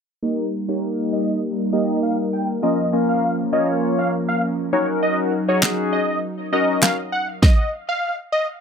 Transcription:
0.23 G3 A#3 D#4 G4 A#4 D#5
0.68 A#3 D#4 G4 A#4 C#5
1.13 D#5
1.73 A#3 D#4 G4 A#4 D#5
2.03 F5
2.33 G5
2.63 F3 A#3 C#4 F4 A#4 D#5
2.93 A#3 C#4 F4 A#4
3.09 F5
3.53 A#3 C#4 F4 C#5 D#5
3.99 F5
4.29 F5
4.73 F#3 C#4 D#4 F#4 A#4 C#5
5.03 D#5
5.48 C#4 D#4 F#4 G#4 C#5
5.63 snare, clap
5.93 D#5
6.52 C#4 D#4 F#4 A#4 D#5
6.82 F5, snare, clap
7.12 F#5
7.42 D#5, kick, snare
7.89 F5
8.32 D#5

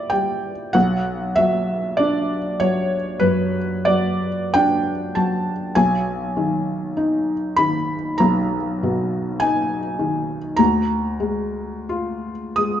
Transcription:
Already playing: A#2 G3 E4 D5 E5 F#5
0.10 G3 G5
0.73 B1 F#5
1.36 F#3 E5
1.97 D4 D5
2.60 F#3 C#5
3.20 F#2 B4
3.85 F#3 D5
4.54 D4 G5
5.15 F#3 A5
5.75 B1 G#5
6.37 D#3
6.97 D#4
7.56 D#3 B5
8.18 B1 A#5
8.83 B2
9.40 D#4 G#5
9.99 D#3
10.56 D2 A#5
11.20 G#3
11.89 F4
12.56 G#3 D#6

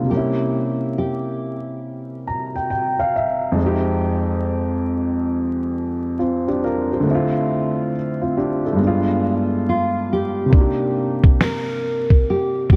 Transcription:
Already playing: C3 G3 A#3 D4 F4 A#4
0.02 C3
0.07 G3 A#3
0.11 C#4 G4
0.17 E4
0.98 G4
2.27 A#5
2.56 G5
2.70 G5
2.99 F5
3.16 E5
3.52 F2 G#3
3.59 C4 D#4
3.66 G4
6.19 C4 F4
6.48 D4 G4
6.64 F4 A#4
6.92 G4 C5
7.00 D3 A3
7.07 C4 E4
7.15 F4
8.21 C4 F4
8.37 D4 G4
8.65 E4 A4
8.73 G2 G#3
8.79 B3 D4
8.87 F4
9.69 F4
10.13 G4
10.46 C3
10.50 A#3 D4, kick
10.57 D#4 G4
11.24 kick
11.41 A#4, snare
12.10 kick
12.30 G4
12.70 G4, kick

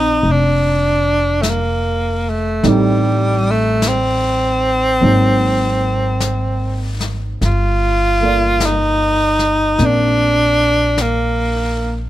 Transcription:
Already playing: A#1 F3 C4 D#4 A4 D5
0.23 F1, brush sweep
0.31 D4
1.42 A3, brush sweep, snare, hi-hat pedal
1.50 A#3
2.29 A3
2.63 A1 G3 A3 C4 D#4, brush sweep, snare
2.68 G3
3.51 A3
3.82 brush sweep, snare, hi-hat pedal
3.88 C4
5.01 G#1 F#3 A#3 C4 D#4, brush sweep
6.21 brush sweep, snare, hi-hat pedal
7.01 snare
7.41 G1 F4, brush sweep, snare
8.21 A#3 A4 D5
8.26 F4
8.60 brush sweep, snare, hi-hat pedal
8.66 D#4
9.39 snare
9.79 A#1 A#3 C4 D4, brush sweep, snare
9.85 D4
10.98 A#3, brush sweep, snare, hi-hat pedal

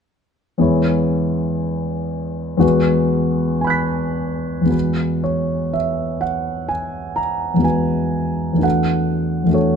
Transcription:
0.58 E2 G#3 B3 E4 C#5
2.57 E2 G#3 B3 F#4 B4
3.61 G#5 B5
3.67 F#6 B6
4.61 E2 G#3
4.66 B3 F#4
4.71 B4
5.24 C#5
5.74 E5
6.21 F#5
6.69 G#5
7.16 A#5
7.54 E2 G#3
7.59 B3 F#4
7.64 B4 G#5
8.53 E2 A3
8.57 D4 F#4
8.62 A4 F#5
9.44 E2 A3
9.49 D4 F#4
9.54 A4 C#5

